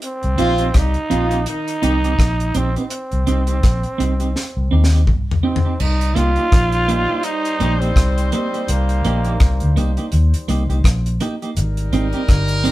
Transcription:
0.02 C4, closed hi-hat
0.23 C2, closed hi-hat
0.38 A#1 F3 C4 D#4 F4 G4, closed hi-hat
0.58 C4 D#4 G4, closed hi-hat
0.74 C2 G3 D#4 G4, kick, cross-stick, closed hi-hat
0.94 closed hi-hat
1.10 A#1 F3 C4 D#4 F4 G4, closed hi-hat
1.31 C4 D#4 G4, closed hi-hat
1.46 D#3 D#4, closed hi-hat
1.68 closed hi-hat
1.81 C2 D#3 C4 D#4 G4, closed hi-hat
2.04 C4 D#4 G4, closed hi-hat
2.19 A#1, kick, cross-stick, closed hi-hat
2.40 closed hi-hat
2.54 A#1 C4 D#4 G4, closed hi-hat
2.76 C4 D#4 G4, closed hi-hat
2.90 closed hi-hat
3.12 C2, closed hi-hat
3.27 C2 C4 D#4 G4, closed hi-hat
3.47 C4 D#4 G4, closed hi-hat
3.63 A#1, kick, cross-stick, closed hi-hat
3.83 closed hi-hat
3.98 C2 C4 D#4 G4, closed hi-hat
4.20 C4 D#4 G4, closed hi-hat
4.36 snare
4.57 C2
4.71 D#2 C4 D#4 G4
4.84 snare
4.92 C4 D#4 G4
5.07 C2, kick, mid tom
5.31 floor tom
5.43 C4 D#4 G4
5.56 floor tom
5.65 C4 D#4 G4
5.80 C2 G3 D#4 C5, crash
6.01 closed hi-hat
6.16 C2 A#3 D#4 F4 G4, closed hi-hat
6.36 A#3 D#4 G4, closed hi-hat
6.52 A#1, kick, cross-stick, closed hi-hat
6.72 closed hi-hat
6.88 A#3 D#4 G4, closed hi-hat
7.09 A#3 D#4 G4
7.23 D#4, closed hi-hat
7.45 closed hi-hat
7.60 A#1 A#3 D#4 G4, closed hi-hat
7.81 A#3 C4 D#4 G4, closed hi-hat
7.96 C2, kick, cross-stick, closed hi-hat
8.18 closed hi-hat
8.32 A#3 C4 D#4 G4, closed hi-hat
8.53 A#3 D#4 G4, closed hi-hat
8.68 C2 A#3, closed hi-hat
8.89 closed hi-hat
9.05 A#1 A#3 D#4 G4, closed hi-hat
9.24 A#3 D#4 G4, closed hi-hat
9.40 C2, kick, cross-stick, closed hi-hat
9.60 D2, closed hi-hat
9.76 C2 A#3 D#4 G4, closed hi-hat
9.97 A#3 D#4 G4, closed hi-hat
10.12 D#2, closed hi-hat
10.34 closed hi-hat
10.48 C2 A#3 D#4 G4, closed hi-hat
10.70 C2 A#3 D#4 G4, closed hi-hat
10.84 A#1, kick, cross-stick, closed hi-hat
11.06 closed hi-hat
11.20 A#3 D#4 G4, closed hi-hat
11.42 A#3 D#4 G4, closed hi-hat
11.56 G#1 G3 D#4 A#4, closed hi-hat
11.77 closed hi-hat
11.93 G#1 C4 D#4 G4, closed hi-hat
12.13 C4 D#4 G4, closed hi-hat
12.28 G1, kick, cross-stick, closed hi-hat
12.48 closed hi-hat
12.64 C4 D#4 G4, closed hi-hat

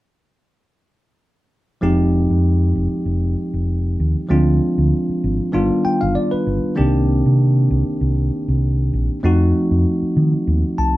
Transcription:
1.81 F1 F3 G#3 C4 D#4 G4
2.30 F2
2.76 F1
2.92 muted fingered electric bass stroke
3.06 F1
3.54 F1
4.00 D#2
4.16 muted fingered electric bass stroke
4.29 D2 F3 G#3 C4 D4 F4
4.78 D2
5.09 muted fingered electric bass stroke
5.24 G#1
5.52 G1 D#3 G3 B3 D4 F4
5.85 G5, muted fingered electric bass stroke
6.01 G1 F5
6.15 D5
6.31 B4, muted fingered electric bass stroke
6.47 G1
6.64 muted fingered electric bass stroke
6.75 C2 D#3 A#3 C4 D4 G4
7.26 C3
7.70 C2
7.87 muted fingered electric bass stroke
8.01 C2
8.48 C2
8.93 A#1
9.10 muted fingered electric bass stroke
9.23 F2 F3 A3 C4 D#4 F#4
9.71 F2
10.02 muted fingered electric bass stroke
10.17 D#3
10.47 D#2
10.78 C2 A5

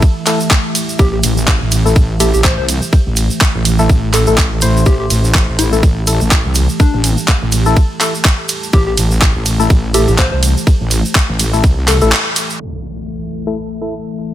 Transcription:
Already playing: E3 A3 G4 E5
0.02 kick, ride, shaker
0.26 A3 E4 A4, clap, open hi-hat, ride, shaker
0.40 shaker
0.50 kick, clap, shaker
0.75 open hi-hat, ride, shaker
0.89 shaker
0.99 A1 G4, kick, ride, shaker
1.13 G4
1.23 A1, open hi-hat, ride, shaker
1.37 shaker
1.47 kick, clap, ride, shaker
1.61 A1
1.72 open hi-hat, ride, shaker
1.85 A3 E4 A4, shaker
1.96 A1, kick, ride, shaker
2.20 A3 E4 G4 A4, open hi-hat, ride, shaker
2.34 A1 G4, shaker
2.44 C5, kick, clap, open hi-hat, ride, shaker
2.58 C2 C5
2.69 open hi-hat, ride, shaker
2.82 shaker
2.93 kick, ride, shaker
3.06 A1
3.16 open hi-hat, ride, shaker
3.30 shaker
3.41 kick, clap, shaker
3.55 A1
3.65 open hi-hat, ride, shaker
3.79 A3 E4 A4, shaker
3.89 A1, kick, ride, shaker
4.14 A4, clap, open hi-hat, ride, shaker
4.27 A1 A3 E4 A4, shaker
4.38 kick, clap, ride, shaker
4.61 A1 A3 E4 C5, open hi-hat, ride, shaker
4.77 shaker
4.86 A1 G4 A5, kick, ride, shaker
5.00 G4
5.10 A1, open hi-hat, ride, shaker
5.24 shaker
5.35 kick, clap, shaker
5.48 A1
5.59 E4, open hi-hat, ride, shaker
5.73 A3 E4 A4, shaker
5.83 A1, kick, ride, shaker
6.07 A3 E4 A4, open hi-hat, ride, shaker
6.21 A1, shaker
6.31 kick, clap, open hi-hat, shaker
6.45 C2
6.55 open hi-hat, ride, shaker
6.69 shaker
6.80 D4, kick, ride, shaker
6.94 A1
7.04 open hi-hat, ride, shaker
7.17 shaker
7.28 kick, clap, ride, shaker
7.42 A1
7.52 open hi-hat, ride, shaker
7.66 A3 E4 A4, shaker
7.76 kick, ride, shaker
8.01 A3 E4 A4, clap, open hi-hat, ride, shaker
8.15 shaker
8.25 kick, clap, ride, shaker
8.49 open hi-hat, ride, shaker
8.63 shaker
8.73 A1 G4, kick, ride, shaker
8.87 G4
8.97 A1, open hi-hat, ride, shaker
9.11 shaker
9.21 kick, clap, shaker
9.35 A1
9.46 open hi-hat, ride, shaker
9.60 A3 E4 A4, shaker
9.70 A1, kick, ride, shaker
9.94 A3 E4 G4 A4, open hi-hat, ride, shaker
10.08 A1 G4, shaker
10.18 C5, kick, clap, open hi-hat, ride, shaker
10.32 C2 C5
10.43 open hi-hat, ride, shaker
10.57 shaker
10.67 kick, ride, shaker
10.81 A1
10.91 open hi-hat, ride, shaker
11.05 shaker
11.15 kick, clap, ride, shaker
11.29 A1
11.39 open hi-hat, ride, shaker
11.53 A3 E4 A4, shaker
11.64 C2, kick, ride, shaker
11.88 A4, clap, open hi-hat, ride, shaker
12.01 A1 A3 E4 A4, shaker
12.11 clap, ride, shaker
12.36 open hi-hat, ride, shaker
12.50 shaker
12.60 E3 A3 A4 E5, crash, impact
13.33 shaker
13.47 A3 E4 A4, shaker
13.81 A3 E4 A4, shaker
13.95 shaker
14.29 shaker

